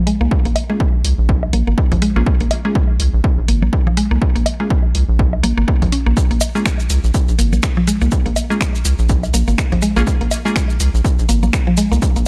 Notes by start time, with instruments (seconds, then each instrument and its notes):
0.07 synth arpeggio sound G#3, open hi-hat
0.21 analog synth bass C2, synth arpeggio sound A#3
0.31 kick
0.45 analog synth bass A#1, synth arpeggio sound A#3, open hi-hat
0.56 open hi-hat, low woodblock
0.70 synth arpeggio sound G#3, synth stab A#3 C#4 F4 G#4
0.80 kick
1.04 analog synth bass C#2, open hi-hat
1.18 analog synth bass A#1
1.29 kick
1.43 analog synth bass C2, low woodblock
1.53 analog synth bass A#1, synth arpeggio sound A#3, open hi-hat, low conga
1.67 analog synth bass G#1, synth arpeggio sound A#3
1.78 kick
1.92 analog synth bass A#1, synth arpeggio sound F3, kick, open hi-hat
2.02 synth arpeggio sound G#3, open hi-hat
2.16 analog synth bass A#1, synth stab A#3 C#4 F4 G#4, synth arpeggio sound A#3
2.26 kick
2.40 analog synth bass A#1, synth arpeggio sound A#3, open hi-hat
2.51 open hi-hat, low woodblock
2.65 synth arpeggio sound G#3, synth stab A#3 C#4 F4 G#4
2.75 kick
3.00 analog synth bass C#2, open hi-hat
3.14 analog synth bass A#1
3.24 kick
3.38 analog synth bass A#1
3.48 analog synth bass G#1, synth arpeggio sound A#3, open hi-hat
3.62 analog synth bass A#1, synth arpeggio sound A#3, low conga
3.73 kick
3.87 synth arpeggio sound F3, low conga
3.97 synth arpeggio sound G#3, open hi-hat
4.11 analog synth bass C2, synth arpeggio sound A#3
4.22 kick
4.36 analog synth bass A#1, synth arpeggio sound A#3, open hi-hat
4.46 open hi-hat, low woodblock
4.60 synth arpeggio sound G#3, synth stab A#3 C#4 F4 G#4
4.70 kick
4.95 analog synth bass C#2, open hi-hat
5.09 analog synth bass A#1
5.19 kick
5.33 analog synth bass C2, low woodblock
5.43 analog synth bass A#1, synth arpeggio sound A#3, open hi-hat, low conga
5.57 analog synth bass G#1, synth arpeggio sound A#3
5.68 synth arpeggio sound A#3, kick
5.82 analog synth bass A#1, synth arpeggio sound F3, kick, open hi-hat
5.92 synth arpeggio sound C#4, open hi-hat
6.06 analog synth bass A#1, synth arpeggio sound A#3
6.17 kick, maracas
6.31 analog synth bass A#1, synth arpeggio sound A#3, open hi-hat
6.41 open hi-hat, low woodblock, maracas
6.55 synth arpeggio sound G#3, synth stab A#3 C#4 F4 G#4, maracas
6.66 finger snap, kick, maracas
6.80 maracas
6.90 analog synth bass C#2, open hi-hat, maracas
7.04 analog synth bass A#1, maracas
7.14 kick, maracas
7.28 analog synth bass A#1, maracas
7.39 analog synth bass G#1, synth arpeggio sound A#3, open hi-hat, maracas
7.53 analog synth bass A#1, synth arpeggio sound A#3, low conga, maracas
7.63 finger snap, kick, maracas
7.77 synth arpeggio sound F3, low conga
7.87 synth arpeggio sound G#3, open hi-hat, maracas
8.01 analog synth bass C2, synth arpeggio sound A#3, maracas
8.11 kick, maracas
8.26 analog synth bass A#1, synth arpeggio sound A#3, open hi-hat
8.36 open hi-hat, low woodblock, maracas
8.50 synth arpeggio sound G#3, synth stab A#3 C#4 F4 G#4, maracas
8.61 finger snap, kick, maracas
8.75 maracas
8.85 analog synth bass C#2, open hi-hat, maracas
8.99 analog synth bass A#1, maracas
9.09 kick, maracas
9.23 analog synth bass C2, low woodblock, maracas
9.34 analog synth bass A#1, synth arpeggio sound A#3, open hi-hat, low conga, maracas
9.48 analog synth bass G#1, synth arpeggio sound A#3, maracas
9.58 finger snap, kick, maracas
9.72 analog synth bass A#1, synth arpeggio sound F3, kick, open hi-hat
9.82 synth arpeggio sound G#3, open hi-hat, maracas
9.96 analog synth bass A#1, synth arpeggio sound A#3, synth stab A#3 C#4 F4 G#4, maracas
10.07 kick, maracas
10.21 analog synth bass A#1, synth arpeggio sound A#3, open hi-hat
10.31 open hi-hat, low woodblock, maracas
10.45 synth arpeggio sound G#3, synth stab A#3 C#4 F4 G#4, maracas
10.56 finger snap, kick, maracas
10.70 maracas
10.80 analog synth bass C#2, open hi-hat, maracas
10.94 analog synth bass A#1, maracas
11.05 kick, maracas
11.19 analog synth bass A#1, maracas
11.29 analog synth bass G#1, synth arpeggio sound A#3, open hi-hat, maracas
11.43 analog synth bass A#1, synth arpeggio sound A#3, low conga, maracas
11.53 finger snap, kick, maracas
11.67 synth arpeggio sound F3, low conga
11.77 synth arpeggio sound G#3, open hi-hat, maracas
11.92 analog synth bass C2, synth arpeggio sound A#3, maracas
12.02 kick, maracas
12.16 analog synth bass A#1, synth arpeggio sound A#3, open hi-hat, maracas